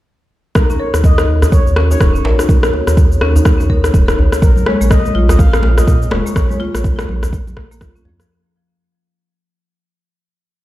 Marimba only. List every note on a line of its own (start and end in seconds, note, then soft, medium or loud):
0.55 0.68 D#4 medium
0.70 0.79 C#4 medium
0.80 0.87 A#4 loud
0.94 1.03 D#4 medium
1.18 1.27 D#4 medium
1.76 1.89 C#4 loud
1.91 1.96 D#4 medium
2.00 2.13 D#4 medium
2.15 2.24 C#4 medium
2.25 2.32 A#4 medium
2.39 2.48 D#4 medium
2.63 2.72 D#4 medium
3.21 3.34 C#4 loud
3.36 3.41 D#4 medium
3.46 3.59 D#4 medium
3.60 3.69 C#4 medium
3.70 3.78 A#4 loud
3.84 3.94 D#4 medium
4.08 4.17 D#4 medium
4.67 4.80 G#3 loud
4.81 4.86 A#3 medium
4.91 5.04 A#3 medium
5.05 5.14 G#3 medium
5.15 5.23 F4 loud
5.29 5.39 A#3 medium
5.54 5.62 A#3 medium
6.11 6.25 G#3 loud
6.26 6.31 A#3 medium
6.36 6.49 A#3 medium
6.50 6.60 G#3 medium
6.60 6.68 F4 loud
6.74 6.84 A#3 medium
6.99 7.07 A#3 medium
7.57 7.70 A#3 medium
7.71 7.77 A#3 loud
7.81 7.94 F4 medium
7.95 8.01 C#4 medium
8.05 8.18 F3 medium
8.20 8.29 F3 loud